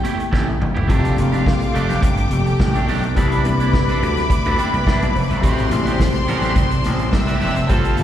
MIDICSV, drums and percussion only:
0, 0, Header, 1, 2, 480
1, 0, Start_track
1, 0, Tempo, 567108
1, 758, Time_signature, 4, 2, 24, 8
1, 6799, End_track
2, 0, Start_track
2, 0, Title_t, "Drums"
2, 39, Note_on_c, 9, 42, 65
2, 40, Note_on_c, 9, 63, 74
2, 123, Note_off_c, 9, 42, 0
2, 124, Note_off_c, 9, 63, 0
2, 167, Note_on_c, 9, 42, 40
2, 252, Note_off_c, 9, 42, 0
2, 277, Note_on_c, 9, 36, 105
2, 279, Note_on_c, 9, 62, 36
2, 279, Note_on_c, 9, 63, 77
2, 285, Note_on_c, 9, 38, 58
2, 361, Note_off_c, 9, 36, 0
2, 363, Note_off_c, 9, 62, 0
2, 363, Note_off_c, 9, 63, 0
2, 370, Note_off_c, 9, 38, 0
2, 405, Note_on_c, 9, 63, 48
2, 489, Note_off_c, 9, 63, 0
2, 522, Note_on_c, 9, 45, 86
2, 526, Note_on_c, 9, 64, 86
2, 606, Note_off_c, 9, 45, 0
2, 610, Note_off_c, 9, 64, 0
2, 649, Note_on_c, 9, 43, 91
2, 733, Note_off_c, 9, 43, 0
2, 748, Note_on_c, 9, 62, 29
2, 758, Note_on_c, 9, 36, 93
2, 759, Note_on_c, 9, 42, 77
2, 833, Note_off_c, 9, 62, 0
2, 842, Note_off_c, 9, 36, 0
2, 844, Note_off_c, 9, 42, 0
2, 884, Note_on_c, 9, 62, 27
2, 887, Note_on_c, 9, 42, 46
2, 969, Note_off_c, 9, 62, 0
2, 972, Note_off_c, 9, 42, 0
2, 984, Note_on_c, 9, 63, 82
2, 998, Note_on_c, 9, 42, 62
2, 1069, Note_off_c, 9, 63, 0
2, 1083, Note_off_c, 9, 42, 0
2, 1120, Note_on_c, 9, 63, 86
2, 1131, Note_on_c, 9, 42, 42
2, 1205, Note_off_c, 9, 63, 0
2, 1216, Note_off_c, 9, 42, 0
2, 1239, Note_on_c, 9, 36, 109
2, 1248, Note_on_c, 9, 38, 117
2, 1324, Note_off_c, 9, 36, 0
2, 1333, Note_off_c, 9, 38, 0
2, 1365, Note_on_c, 9, 62, 33
2, 1371, Note_on_c, 9, 42, 51
2, 1449, Note_off_c, 9, 62, 0
2, 1456, Note_off_c, 9, 42, 0
2, 1484, Note_on_c, 9, 42, 59
2, 1569, Note_off_c, 9, 42, 0
2, 1607, Note_on_c, 9, 64, 86
2, 1608, Note_on_c, 9, 42, 46
2, 1614, Note_on_c, 9, 38, 32
2, 1692, Note_off_c, 9, 64, 0
2, 1693, Note_off_c, 9, 42, 0
2, 1699, Note_off_c, 9, 38, 0
2, 1714, Note_on_c, 9, 36, 121
2, 1716, Note_on_c, 9, 42, 90
2, 1799, Note_off_c, 9, 36, 0
2, 1801, Note_off_c, 9, 42, 0
2, 1841, Note_on_c, 9, 42, 45
2, 1843, Note_on_c, 9, 62, 36
2, 1925, Note_off_c, 9, 42, 0
2, 1927, Note_off_c, 9, 62, 0
2, 1953, Note_on_c, 9, 42, 69
2, 1958, Note_on_c, 9, 63, 84
2, 2038, Note_off_c, 9, 42, 0
2, 2042, Note_off_c, 9, 63, 0
2, 2085, Note_on_c, 9, 42, 42
2, 2169, Note_off_c, 9, 42, 0
2, 2196, Note_on_c, 9, 63, 70
2, 2198, Note_on_c, 9, 36, 117
2, 2201, Note_on_c, 9, 38, 107
2, 2281, Note_off_c, 9, 63, 0
2, 2282, Note_off_c, 9, 36, 0
2, 2285, Note_off_c, 9, 38, 0
2, 2329, Note_on_c, 9, 42, 50
2, 2414, Note_off_c, 9, 42, 0
2, 2441, Note_on_c, 9, 46, 59
2, 2448, Note_on_c, 9, 64, 87
2, 2526, Note_off_c, 9, 46, 0
2, 2533, Note_off_c, 9, 64, 0
2, 2570, Note_on_c, 9, 42, 52
2, 2654, Note_off_c, 9, 42, 0
2, 2678, Note_on_c, 9, 42, 82
2, 2680, Note_on_c, 9, 36, 100
2, 2763, Note_off_c, 9, 42, 0
2, 2765, Note_off_c, 9, 36, 0
2, 2808, Note_on_c, 9, 42, 50
2, 2893, Note_off_c, 9, 42, 0
2, 2914, Note_on_c, 9, 63, 87
2, 2919, Note_on_c, 9, 42, 68
2, 2999, Note_off_c, 9, 63, 0
2, 3004, Note_off_c, 9, 42, 0
2, 3047, Note_on_c, 9, 42, 42
2, 3049, Note_on_c, 9, 63, 80
2, 3131, Note_off_c, 9, 42, 0
2, 3134, Note_off_c, 9, 63, 0
2, 3161, Note_on_c, 9, 36, 120
2, 3165, Note_on_c, 9, 38, 124
2, 3245, Note_off_c, 9, 36, 0
2, 3250, Note_off_c, 9, 38, 0
2, 3291, Note_on_c, 9, 42, 47
2, 3295, Note_on_c, 9, 62, 35
2, 3375, Note_off_c, 9, 42, 0
2, 3379, Note_off_c, 9, 62, 0
2, 3409, Note_on_c, 9, 42, 55
2, 3494, Note_off_c, 9, 42, 0
2, 3528, Note_on_c, 9, 64, 79
2, 3529, Note_on_c, 9, 42, 45
2, 3535, Note_on_c, 9, 38, 34
2, 3613, Note_off_c, 9, 64, 0
2, 3614, Note_off_c, 9, 42, 0
2, 3619, Note_off_c, 9, 38, 0
2, 3639, Note_on_c, 9, 36, 125
2, 3642, Note_on_c, 9, 42, 92
2, 3644, Note_on_c, 9, 62, 29
2, 3723, Note_off_c, 9, 36, 0
2, 3727, Note_off_c, 9, 42, 0
2, 3728, Note_off_c, 9, 62, 0
2, 3768, Note_on_c, 9, 42, 42
2, 3768, Note_on_c, 9, 62, 34
2, 3853, Note_off_c, 9, 42, 0
2, 3853, Note_off_c, 9, 62, 0
2, 3879, Note_on_c, 9, 63, 87
2, 3882, Note_on_c, 9, 42, 60
2, 3963, Note_off_c, 9, 63, 0
2, 3966, Note_off_c, 9, 42, 0
2, 4010, Note_on_c, 9, 42, 40
2, 4095, Note_off_c, 9, 42, 0
2, 4119, Note_on_c, 9, 63, 83
2, 4120, Note_on_c, 9, 36, 115
2, 4127, Note_on_c, 9, 38, 101
2, 4204, Note_off_c, 9, 36, 0
2, 4204, Note_off_c, 9, 63, 0
2, 4212, Note_off_c, 9, 38, 0
2, 4252, Note_on_c, 9, 42, 48
2, 4252, Note_on_c, 9, 62, 29
2, 4336, Note_off_c, 9, 42, 0
2, 4336, Note_off_c, 9, 62, 0
2, 4361, Note_on_c, 9, 64, 77
2, 4365, Note_on_c, 9, 46, 59
2, 4445, Note_off_c, 9, 64, 0
2, 4449, Note_off_c, 9, 46, 0
2, 4492, Note_on_c, 9, 42, 49
2, 4576, Note_off_c, 9, 42, 0
2, 4599, Note_on_c, 9, 42, 85
2, 4599, Note_on_c, 9, 54, 47
2, 4600, Note_on_c, 9, 36, 112
2, 4684, Note_off_c, 9, 36, 0
2, 4684, Note_off_c, 9, 42, 0
2, 4684, Note_off_c, 9, 54, 0
2, 4720, Note_on_c, 9, 62, 30
2, 4725, Note_on_c, 9, 42, 53
2, 4804, Note_off_c, 9, 62, 0
2, 4809, Note_off_c, 9, 42, 0
2, 4817, Note_on_c, 9, 63, 93
2, 4834, Note_on_c, 9, 42, 69
2, 4836, Note_on_c, 9, 54, 62
2, 4902, Note_off_c, 9, 63, 0
2, 4918, Note_off_c, 9, 42, 0
2, 4921, Note_off_c, 9, 54, 0
2, 4954, Note_on_c, 9, 63, 93
2, 4966, Note_on_c, 9, 42, 50
2, 5039, Note_off_c, 9, 63, 0
2, 5051, Note_off_c, 9, 42, 0
2, 5066, Note_on_c, 9, 62, 38
2, 5076, Note_on_c, 9, 36, 111
2, 5081, Note_on_c, 9, 38, 117
2, 5084, Note_on_c, 9, 54, 97
2, 5151, Note_off_c, 9, 62, 0
2, 5161, Note_off_c, 9, 36, 0
2, 5165, Note_off_c, 9, 38, 0
2, 5169, Note_off_c, 9, 54, 0
2, 5192, Note_on_c, 9, 62, 35
2, 5205, Note_on_c, 9, 42, 49
2, 5276, Note_off_c, 9, 62, 0
2, 5290, Note_off_c, 9, 42, 0
2, 5318, Note_on_c, 9, 42, 60
2, 5326, Note_on_c, 9, 54, 48
2, 5403, Note_off_c, 9, 42, 0
2, 5411, Note_off_c, 9, 54, 0
2, 5433, Note_on_c, 9, 64, 86
2, 5439, Note_on_c, 9, 42, 43
2, 5445, Note_on_c, 9, 38, 35
2, 5518, Note_off_c, 9, 64, 0
2, 5524, Note_off_c, 9, 42, 0
2, 5529, Note_off_c, 9, 38, 0
2, 5550, Note_on_c, 9, 42, 88
2, 5552, Note_on_c, 9, 36, 127
2, 5552, Note_on_c, 9, 62, 27
2, 5635, Note_off_c, 9, 42, 0
2, 5636, Note_off_c, 9, 36, 0
2, 5636, Note_off_c, 9, 62, 0
2, 5681, Note_on_c, 9, 42, 48
2, 5766, Note_off_c, 9, 42, 0
2, 5791, Note_on_c, 9, 42, 65
2, 5794, Note_on_c, 9, 63, 77
2, 5802, Note_on_c, 9, 54, 59
2, 5876, Note_off_c, 9, 42, 0
2, 5879, Note_off_c, 9, 63, 0
2, 5887, Note_off_c, 9, 54, 0
2, 5918, Note_on_c, 9, 42, 41
2, 6003, Note_off_c, 9, 42, 0
2, 6033, Note_on_c, 9, 36, 108
2, 6034, Note_on_c, 9, 63, 81
2, 6035, Note_on_c, 9, 38, 106
2, 6035, Note_on_c, 9, 54, 72
2, 6118, Note_off_c, 9, 36, 0
2, 6119, Note_off_c, 9, 63, 0
2, 6120, Note_off_c, 9, 38, 0
2, 6120, Note_off_c, 9, 54, 0
2, 6163, Note_on_c, 9, 42, 50
2, 6163, Note_on_c, 9, 62, 30
2, 6247, Note_off_c, 9, 42, 0
2, 6248, Note_off_c, 9, 62, 0
2, 6273, Note_on_c, 9, 46, 71
2, 6274, Note_on_c, 9, 64, 77
2, 6284, Note_on_c, 9, 54, 35
2, 6357, Note_off_c, 9, 46, 0
2, 6358, Note_off_c, 9, 64, 0
2, 6369, Note_off_c, 9, 54, 0
2, 6402, Note_on_c, 9, 42, 53
2, 6487, Note_off_c, 9, 42, 0
2, 6506, Note_on_c, 9, 62, 35
2, 6511, Note_on_c, 9, 42, 82
2, 6514, Note_on_c, 9, 36, 102
2, 6519, Note_on_c, 9, 54, 50
2, 6591, Note_off_c, 9, 62, 0
2, 6596, Note_off_c, 9, 42, 0
2, 6599, Note_off_c, 9, 36, 0
2, 6604, Note_off_c, 9, 54, 0
2, 6641, Note_on_c, 9, 42, 47
2, 6725, Note_off_c, 9, 42, 0
2, 6745, Note_on_c, 9, 63, 88
2, 6750, Note_on_c, 9, 42, 64
2, 6754, Note_on_c, 9, 54, 59
2, 6799, Note_off_c, 9, 42, 0
2, 6799, Note_off_c, 9, 54, 0
2, 6799, Note_off_c, 9, 63, 0
2, 6799, End_track
0, 0, End_of_file